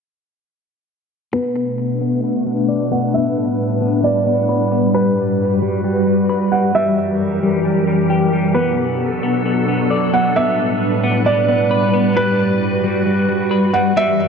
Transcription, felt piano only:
1.33 2.87 B4 medium
2.92 3.13 F#5 medium
3.14 4.00 E5 medium
4.04 4.90 D5 medium
4.94 6.48 B4 loud
6.52 6.73 F#5 medium
6.75 7.61 E5 loud
8.54 10.09 B4 medium
10.14 10.35 F#5 medium
10.36 11.22 E5 medium
11.26 12.12 D5 medium
12.17 13.70 B4 loud
13.74 13.95 F#5 medium
13.97 14.28 E5 loud

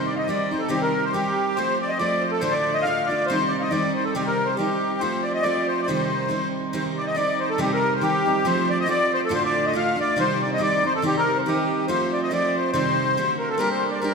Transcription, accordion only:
0.07 0.15 D5 medium
0.16 0.28 D#5 medium
0.16 0.18 F5 medium
0.28 0.52 D5 medium
0.52 0.61 C5 medium
0.59 0.69 A4 medium
0.70 0.82 G4 medium
0.82 1.04 A#4 medium
1.05 1.13 C5 medium
1.13 1.57 G4 medium
1.56 1.78 C5 loud
1.81 1.91 D5 medium
1.88 1.98 D#5 medium
1.98 2.23 D5 loud
2.21 2.31 C5 medium
2.32 2.41 A4 medium
2.40 2.53 C5 loud
2.51 2.75 D5 loud
2.74 2.85 D#5 medium
2.82 3.08 F5 loud
3.06 3.26 D5 medium
3.26 3.51 C5 loud
3.48 3.57 D5 medium
3.60 3.72 D#5 medium
3.60 3.62 F5 medium
3.70 3.93 D5 loud
3.94 4.05 C5 medium
4.05 4.14 A4 medium
4.15 4.26 G4 medium
4.27 4.49 A#4 medium
4.45 4.57 C5 medium
4.57 5.01 G4 medium
5.00 5.24 C5 loud
5.23 5.32 D5 medium
5.34 5.44 D#5 medium
5.42 5.67 D5 loud
5.68 5.81 C5 medium
5.82 6.48 C5 medium
5.82 5.87 D5 medium
6.74 6.84 C5 medium
6.98 7.06 D5 medium
7.06 7.16 D#5 medium
7.15 7.39 D5 loud
7.40 7.49 C5 medium
7.50 7.59 A4 medium
7.60 7.71 G4 medium
7.74 7.94 A#4 loud
7.96 8.03 C5 medium
8.03 8.46 G4 loud
8.47 8.69 C5 loud
8.70 8.79 D5 medium
8.80 8.88 D#5 medium
8.90 9.12 D5 loud
9.14 9.21 C5 loud
9.25 9.32 A4 loud
9.34 9.43 C5 loud
9.45 9.65 D5 loud
9.66 9.74 D#5 medium
9.77 9.99 F5 loud
10.00 10.18 D5 loud
10.20 10.42 C5 loud
10.42 10.50 D5 medium
10.54 10.61 D#5 medium
10.62 10.84 D5 loud
10.86 10.93 C5 medium
10.95 11.03 A4 loud
11.06 11.16 G4 loud
11.18 11.37 A#4 loud
11.37 11.41 C5 medium
11.47 11.86 G4 medium
11.88 12.11 C5 loud
12.13 12.21 D5 medium
12.23 12.31 D#5 medium
12.33 12.56 D5 loud
12.55 12.71 C5 medium
12.72 13.35 C5 loud
13.39 13.49 A#4 medium
13.49 13.59 A4 medium
13.58 13.69 A#4 medium
13.71 13.91 C5 medium
13.91 14.01 D5 medium
14.01 14.12 A#4 medium

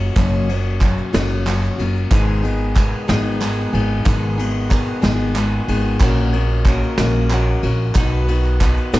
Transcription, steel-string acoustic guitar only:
0.00 0.17 F#3 soft
0.00 0.16 A#3 soft
0.00 0.16 C#4 medium
0.00 0.16 F#4 medium
0.17 0.49 F#2 medium
0.17 0.49 C#3 medium
0.17 0.49 F#3 medium
0.17 0.49 A#3 medium
0.17 0.48 C#4 medium
0.17 0.48 F#4 medium
0.49 0.79 F#3 soft
0.49 0.80 A#3 soft
0.49 0.81 C#4 medium
0.49 0.81 F#4 medium
0.81 1.13 F#3 medium
0.81 1.12 A#3 medium
0.81 1.12 C#4 medium
0.81 1.12 F#4 medium
1.13 1.46 F#2 medium
1.13 1.46 C#3 medium
1.13 1.44 F#3 medium
1.13 1.46 A#3 medium
1.13 1.46 C#4 medium
1.13 1.46 F#4 medium
1.46 1.78 F#3 medium
1.46 1.79 A#3 medium
1.46 1.78 C#4 medium
1.46 1.77 F#4 medium
1.78 2.11 F#3 soft
1.78 2.11 A#3 soft
1.78 2.11 C#4 medium
1.78 2.11 F#4 medium
2.11 2.43 G#2 medium
2.11 2.43 D#3 medium
2.11 2.44 G#3 medium
2.11 2.43 B3 medium
2.11 2.42 D#4 medium
2.11 2.42 G#4 loud
2.43 2.73 G#3 soft
2.43 2.74 B3 medium
2.43 2.75 D#4 medium
2.43 2.76 G#4 medium
2.75 3.07 G#3 medium
2.75 3.07 B3 medium
2.75 3.07 D#4 medium
2.75 3.07 G#4 medium
3.08 3.41 G#2 medium
3.08 3.41 D#3 medium
3.08 3.39 G#3 medium
3.08 3.40 B3 medium
3.08 3.41 D#4 medium
3.08 3.41 G#4 medium
3.40 3.73 G#3 medium
3.40 3.73 B3 medium
3.40 3.73 D#4 medium
3.40 3.72 G#4 medium
3.73 4.04 G#3 soft
3.73 4.05 B3 soft
3.73 4.05 D#4 medium
3.73 4.05 G#4 medium
4.05 4.38 G#2 medium
4.05 4.38 D#3 medium
4.05 4.38 G#3 medium
4.05 4.38 B3 medium
4.05 4.37 D#4 loud
4.05 4.36 G#4 medium
4.38 4.68 G#3 medium
4.38 4.69 B3 soft
4.38 4.70 D#4 medium
4.38 4.70 G#4 medium
4.70 5.01 G#3 medium
4.70 5.01 B3 medium
4.70 5.01 D#4 medium
4.70 5.00 G#4 medium
5.01 5.35 G#2 medium
5.01 5.35 D#3 medium
5.01 5.34 G#3 medium
5.01 5.34 B3 medium
5.01 5.35 D#4 medium
5.01 5.35 G#4 medium
5.35 5.68 G#3 medium
5.35 5.68 B3 medium
5.35 5.68 D#4 medium
5.35 5.67 G#4 medium
5.68 6.01 G#3 soft
5.68 6.01 B3 medium
5.68 6.01 D#4 medium
5.68 6.01 G#4 medium
6.01 6.33 A#3 medium
6.01 6.34 C#4 medium
6.01 6.34 F#4 loud
6.01 6.32 A#4 loud
6.34 6.66 C#4 soft
6.34 6.67 F#4 medium
6.34 6.66 A#4 medium
6.67 6.98 A#3 medium
6.67 6.98 C#4 medium
6.67 6.98 F#4 medium
6.67 6.97 A#4 medium
6.98 7.30 A#3 medium
6.98 7.30 C#4 medium
6.98 7.31 F#4 medium
6.98 7.31 A#4 medium
7.31 7.63 A#3 medium
7.31 7.64 C#4 medium
7.31 7.63 F#4 medium
7.31 7.62 A#4 medium
7.63 7.96 C#4 soft
7.63 7.96 F#4 medium
7.63 7.96 A#4 medium
7.96 8.29 B2 medium
7.96 8.29 B3 medium
7.96 8.29 D#4 loud
7.96 8.29 F#4 medium
7.96 8.27 B4 loud
8.29 8.61 D#4 soft
8.29 8.61 F#4 medium
8.29 8.61 B4 medium
8.61 8.93 B3 medium
8.61 8.93 D#4 medium
8.61 8.93 F#4 medium
8.61 8.93 B4 medium
8.94 9.00 B2 medium
8.94 9.00 B3 medium
8.94 9.00 D#4 medium
8.94 9.00 F#4 medium
8.94 9.00 B4 medium

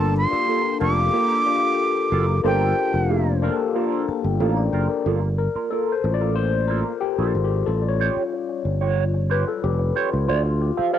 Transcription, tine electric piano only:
0.00 0.13 A#3 medium
0.00 0.13 D4 medium
0.00 0.14 F4 medium
0.00 0.14 G4 medium
0.00 0.14 A4 loud
0.30 0.62 A#3 medium
0.30 0.62 D4 medium
0.30 0.62 F4 medium
0.30 0.63 G4 medium
0.30 0.63 A4 medium
0.80 1.21 A#3 medium
0.80 1.21 D4 medium
0.80 1.21 F4 medium
0.80 1.22 G4 medium
0.80 1.22 A4 medium
1.46 2.06 A#3 medium
1.46 2.07 D4 medium
1.46 2.07 F4 medium
1.46 2.07 G4 medium
1.46 2.08 A4 medium
2.43 3.04 A#3 medium
2.43 3.05 D4 medium
2.43 3.05 F4 medium
2.43 3.05 G4 medium
2.43 3.05 C5 loud
3.42 4.23 A#3 medium
3.42 4.23 D4 medium
3.42 4.23 F4 medium
3.42 4.24 G4 medium
3.42 4.09 A4 loud
4.57 4.72 G5 soft
4.57 4.73 A#5 medium
4.73 4.89 G5 medium
4.89 5.21 A#4 soft
4.89 5.21 D5 medium
5.38 5.72 A#4 medium
5.70 5.93 A4 medium
5.92 6.15 C5 medium
6.04 6.98 A#3 soft
6.04 6.98 F4 medium
6.04 6.98 A4 medium
6.14 6.37 D5 medium
6.36 6.50 C5 loud
6.68 6.99 A#4 medium
7.01 7.24 G4 medium
7.22 7.32 F4 medium
7.44 7.67 G4 medium
7.66 8.11 G3 soft
7.66 8.11 C#4 soft
7.66 8.11 F4 medium
7.66 7.82 A4 medium
7.82 7.89 D5 medium
7.88 8.50 C#5 medium
9.31 9.46 B4 medium
9.48 9.55 A4 medium
9.63 10.09 G4 medium
10.13 10.27 F4 medium
10.28 10.62 F4 medium
10.61 10.76 G4 medium
10.77 10.94 A4 medium
10.93 10.99 A#4 medium

